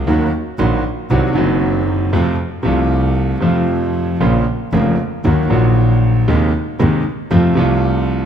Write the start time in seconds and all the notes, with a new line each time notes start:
0.07 D#2 D#3 F#3 A#3 F#4
0.59 A#1 A#2 D#3 F#3 A#3 F#4
1.10 C2 C3 D#3 F#3 C4 F#4
1.33 F#1 F#2 D#3 F#3 C4 F#4
2.13 F2 C3 F3 A3 F4
2.63 C2 C3 F3 A3
2.67 F4
3.40 F2 C3 F3 A3
3.45 F4
4.20 A#1 A#2 C#3 F3 A#3 F4
4.73 F1 F2 C#3 F3 A#3 F4
5.25 D#2 D#3 F#3 A#3 F#4
5.49 A#1 A#2 D#3 F#3 A#3 F#4
6.28 D#2 C3 D#3 G#3 D#4
6.79 D#2 C3 D#3 G#3 D#4
7.31 F2 C3 F3 A3 F4
7.55 C2 C3 F3 A3 F4